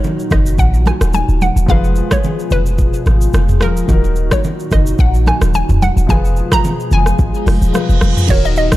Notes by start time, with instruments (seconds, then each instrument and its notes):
Already playing: analog synth pad A#2 D#3 F#3 D#4 F#4, grand piano D#3 D#4 F#4 A#4, synth pluck C#5
0.04 low conga, shaker
0.19 shaker
0.31 808-style bass F#1, synth pluck D#5, kick, cross-stick, high conga, low conga, shaker
0.46 shaker
0.58 808-style bass A#1, synth pluck F#5, kick, shaker
0.74 shaker
0.86 synth pluck G#5, cross-stick, high conga, shaker
1.01 808-style bass D#1, cross-stick, shaker
1.13 synth pluck G#5, high conga, shaker
1.29 808-style bass D#1, shaker
1.41 synth pluck F#5, high conga, shaker
1.56 808-style bass D#1, shaker
1.66 808-style bass F1, analog synth pad B2 F3 G#3 F4 G#4, grand piano F3 F4 G#4, synth pluck F5, kick, low conga, shaker
1.71 grand piano B4
1.84 shaker
1.96 shaker
2.11 synth pluck C#5, kick, cross-stick, high conga, shaker
2.24 low conga, shaker
2.39 shaker
2.51 808-style bass F1, synth pluck B4, high conga, low conga, shaker
2.66 shaker
2.78 kick, shaker
2.94 shaker
3.06 808-style bass G#1, cross-stick, high conga, shaker
3.21 shaker
3.33 808-style bass F1, cross-stick, high conga, shaker
3.49 mid tom, shaker
3.60 808-style bass D#1, grand piano F3 F4 G#4 A#4, synth pluck A#4, cross-stick, high conga, shaker
3.77 shaker
3.87 808-style bass D#1, analog synth pad A#2 D#3 F#3 D#4 F#4, grand piano D#3 D#4 F#4, kick, low conga, shaker
3.92 grand piano A#4
4.04 shaker
4.16 shaker
4.31 synth pluck C#5, kick, cross-stick, high conga, shaker
4.44 low conga, shaker
4.60 shaker
4.71 808-style bass F#1, synth pluck D#5, kick, cross-stick, high conga, low conga, shaker
4.86 shaker
4.99 808-style bass A#1, synth pluck F#5, kick, shaker
5.14 shaker
5.26 synth pluck G#5, cross-stick, high conga, shaker
5.42 808-style bass D#1, cross-stick, shaker
5.54 synth pluck G#5, high conga, shaker
5.69 808-style bass D#1, mid tom, shaker
5.82 synth pluck F#5, high conga, shaker
5.97 808-style bass D#1, shaker
6.07 808-style bass F1, analog synth pad B2 F3 G#3 F4 G#4, grand piano F3 F4 G#4, synth pluck G#5, kick, low conga, shaker
6.12 grand piano B4
6.25 shaker
6.36 shaker
6.52 synth pluck A#5, kick, cross-stick, high conga, shaker
6.64 low conga, shaker
6.80 shaker
6.91 808-style bass F1, synth pluck G#5, low conga, shaker
7.06 cross-stick, shaker
7.19 808-style bass G#1, kick, reverse cymbal, shaker
7.34 shaker
7.46 808-style bass F1, cross-stick, open hi-hat, high conga, shaker
7.62 808-style bass D#1, shaker
7.73 grand piano F3 F4 G#4 B4, cross-stick, high conga, shaker
7.89 808-style bass F1, shaker
8.01 808-style bass F1, cross-stick, high conga, shaker
8.17 mid tom, shaker
8.27 808-style bass D#1, analog synth pad A#2 D#3 F#3 D#4 F#4, grand piano D#3 D#4 F#4, synth pluck C#5, kick, crash, downlifter, low conga, shaker
8.32 grand piano A#4
8.45 synth pluck D#5, shaker
8.56 synth pluck D#5, shaker
8.72 kick, cross-stick, high conga, shaker